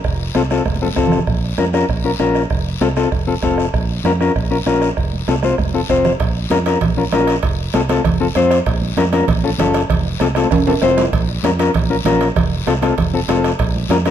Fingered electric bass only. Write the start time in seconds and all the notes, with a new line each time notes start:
0.04 F1
0.35 C2
0.66 F1
0.97 F1
1.27 A#1
1.58 F2
1.89 A#1
2.20 A#1
2.51 F1
2.81 C2
3.12 F1
3.43 F1
3.74 A#1
4.04 F2
4.36 A#1
4.66 A#1
4.97 F1
5.28 C2
5.58 F1
5.89 F1
6.20 A#1
6.51 F2
6.82 A#1
7.12 A#1
7.43 F1
7.74 C2
8.05 F1
8.35 F2
8.66 A#1
8.97 F2
9.28 A#1
9.59 F#1
9.90 F1
10.20 C2
10.51 F1
10.82 F1
11.13 A#1
11.44 F2
11.75 A#1
12.06 A#1
12.36 F1
12.67 C2
12.98 F1
13.28 F1
13.60 A#1
13.89 F2